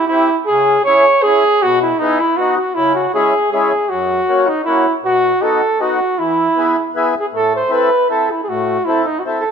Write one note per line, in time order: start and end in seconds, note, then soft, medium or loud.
0.08 0.29 C4 medium
0.08 0.36 E4 medium
0.08 0.29 E4 soft
0.13 0.30 G4 medium
0.46 0.78 C#3 medium
0.46 0.82 G#4 loud
0.84 1.05 C#4 medium
0.84 1.05 E4 medium
0.84 1.24 C#5 loud
0.89 1.06 G#4 medium
1.23 1.43 C#4 medium
1.23 1.44 E4 soft
1.23 1.64 G#4 loud
1.27 1.44 G#4 medium
1.63 1.92 B2 medium
1.63 1.81 F#4 loud
1.82 2.00 E4 medium
1.99 2.19 B3 medium
1.99 2.21 D#4 medium
2.03 2.20 E4 soft
2.03 2.20 G#4 medium
2.19 2.39 E4 medium
2.37 2.57 B3 medium
2.37 2.58 D#4 medium
2.37 2.57 F#4 loud
2.37 2.59 F#4 medium
2.58 2.76 F#4 medium
2.75 3.06 C#3 medium
2.75 2.94 E4 medium
2.95 3.13 F#4 medium
3.14 3.34 G#3 medium
3.14 3.34 C#4 soft
3.14 3.34 E4 medium
3.14 3.50 G#4 medium
3.52 3.71 G#3 medium
3.52 3.72 C#4 soft
3.52 3.72 E4 medium
3.52 3.91 G#4 medium
3.89 4.21 F#2 medium
3.89 4.49 F#4 medium
4.29 4.48 A#3 medium
4.29 4.48 C#4 medium
4.29 4.48 F#4 medium
4.48 4.64 D#4 medium
4.65 4.86 A#3 soft
4.65 4.86 C#4 soft
4.65 4.93 E4 medium
4.65 4.86 F#4 medium
5.03 5.33 B2 medium
5.03 5.44 F#4 loud
5.41 5.61 B3 medium
5.41 5.61 D#4 medium
5.41 5.62 F#4 medium
5.41 5.83 A4 medium
5.80 5.99 B3 medium
5.80 5.99 D#4 soft
5.80 6.00 F#4 medium
5.80 6.21 F#4 medium
6.19 6.48 E3 medium
6.19 6.96 E4 medium
6.56 6.76 B3 medium
6.56 6.76 E4 soft
6.56 6.77 G#4 medium
6.95 7.14 B3 medium
6.95 7.15 E4 medium
6.95 7.15 G#4 medium
7.19 7.26 G#4 medium
7.32 7.62 A2 medium
7.32 7.54 A4 medium
7.56 7.74 C5 medium
7.69 7.89 C4 medium
7.69 7.90 E4 soft
7.69 7.90 A4 medium
7.69 8.10 B4 loud
8.09 8.28 C4 soft
8.09 8.29 E4 soft
8.09 8.33 A4 medium
8.09 8.29 A4 soft
8.31 8.42 E4 medium
8.43 8.50 G#4 medium
8.49 8.78 A2 medium
8.49 8.86 F#4 medium
8.85 9.05 C4 medium
8.85 9.04 E4 medium
8.85 9.06 E4 medium
8.89 9.06 A4 medium
9.05 9.21 D#4 medium
9.19 9.21 F#4 medium
9.25 9.43 C4 soft
9.25 9.44 E4 soft
9.25 9.44 A4 medium
9.41 9.50 A4 medium